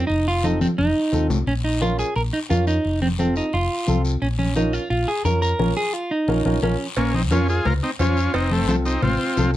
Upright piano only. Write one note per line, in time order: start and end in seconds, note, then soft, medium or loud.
0.43 0.68 C4 medium
0.43 0.68 F4 medium
0.43 0.68 A4 medium
1.12 1.37 C4 medium
1.12 1.37 F4 medium
1.12 1.37 A4 medium
1.81 2.05 C#4 medium
1.81 2.05 F4 medium
1.81 2.06 A#4 medium
2.49 2.74 C#4 medium
2.49 2.74 F4 medium
2.49 2.74 A#4 medium
3.19 3.43 C4 medium
3.19 3.43 F4 medium
3.19 3.43 A4 medium
3.87 4.11 C4 medium
3.87 4.12 F4 medium
3.87 4.12 A4 medium
4.56 4.80 C#4 medium
4.56 4.80 F4 medium
4.56 4.81 A#4 medium
5.25 5.49 C#4 medium
5.25 5.49 F4 medium
5.25 5.49 A#4 medium
5.59 5.70 C#4 medium
5.59 5.70 F4 medium
5.59 5.70 A#4 medium
6.28 6.39 C#4 medium
6.28 6.39 F4 medium
6.28 6.39 A#4 medium
6.46 6.56 C#4 medium
6.46 6.57 F4 medium
6.46 6.56 A#4 medium
6.63 6.74 C#4 medium
6.63 6.74 F4 medium
6.63 6.74 A#4 medium
7.31 7.55 C#4 medium
7.31 7.55 F4 medium
7.31 7.55 A#4 medium
7.99 8.24 C#4 medium
7.99 8.24 F4 medium
7.99 8.24 C5 medium
8.69 8.92 C4 medium
8.69 8.93 F4 medium
8.69 8.93 A4 medium
9.37 9.57 C4 medium
9.37 9.57 F4 medium
9.37 9.57 A4 medium